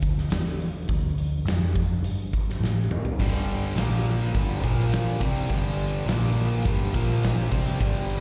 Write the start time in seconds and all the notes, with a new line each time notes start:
Already playing: D2
0.02 kick, open hi-hat
0.18 snare
0.30 E2, snare, open hi-hat
0.59 open hi-hat
0.88 D2, kick, open hi-hat
1.18 open hi-hat
1.45 F2, snare, open hi-hat
1.75 kick, open hi-hat
2.03 G2, open hi-hat
2.33 muted picked electric bass stroke, kick, open hi-hat
2.50 snare
2.60 A2, snare
2.90 muted picked electric bass stroke, mid tom
3.05 floor tom
3.19 G1 G2 D3 G3, kick, crash
3.48 crash
3.76 A#1 A#2 F3 A#3, snare, crash
4.06 crash
4.35 G1 G2 D3 G3, kick, crash
4.63 A#1 A#2 F3 A#3, kick, crash
4.80 snare
4.92 snare, crash
5.21 C2 C3 G3 C4, kick, crash
5.50 G1 G2 D3 G3, kick, crash
5.79 crash
6.06 A#1 A#2 F3 A#3, snare, crash
6.36 crash
6.65 G1 G2 D3 G3, kick, crash
6.93 A#1 A#2 F3 A#3, kick, crash
7.23 snare, crash
7.51 C2 C3 G3 C4, kick, crash
7.79 G1 G2 D3 G3, kick, crash
8.10 crash